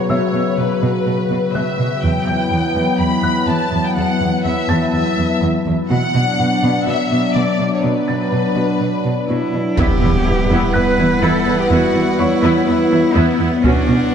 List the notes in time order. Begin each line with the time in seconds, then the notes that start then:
Already playing: C#3 F#3 F#4 B4 B5
0.10 B2 C#5 E5 E6
0.34 B2
0.58 B2 B4
0.82 B2
1.06 B2
1.31 B2
1.54 B2 E5 F#6
1.79 B2
2.03 E2 F#3 B3 E4 B4 G5
2.27 E2 G6
2.51 E2
2.75 E2
3.00 E2 B5
3.23 E2 F#6
3.48 E2 A5
3.72 E2
3.86 G5
3.96 E2 F#5
4.21 E2
4.45 E2 E5
4.69 E2 A5 A6
4.94 E2 E5
5.18 E2
5.42 E2
5.66 E2
5.90 B2 F#3 B3 D4 D5 F#5
6.15 B2
6.39 B2
6.63 B2
6.87 B2 E5
7.11 B2
7.35 B2 D5
7.60 B2
7.73 C#5
7.84 B2 B4
8.08 B2 A6
8.33 B2
8.56 B2
8.81 B2
9.05 B2
9.29 B2 E4
9.53 B2
9.77 E2 G3 B3 E4 G4 B4 F#5, taiko, impact
10.01 E2 B3 E4
10.26 E2 B3 E4
10.50 E2 B3 E4
10.74 E2 B3 E4 B4 F#6
10.98 E2 B3 E4
11.22 E2 B3 E4 A4
11.46 E2 B3 E4
11.60 G4
11.70 E2 B3 E4 F#4
11.94 E2 B3 E4
12.19 E2 B3 E4 C#5 C#6
12.43 E2 B3 E4
12.67 E2 B3 E4
12.91 E2 B3 E4
13.15 E2 B3 E4
13.40 E2 B3 E4
13.64 B2 F#3 B3 C#4 D4 F#4 B4 F#5, taiko
13.88 B2 C#4 F#4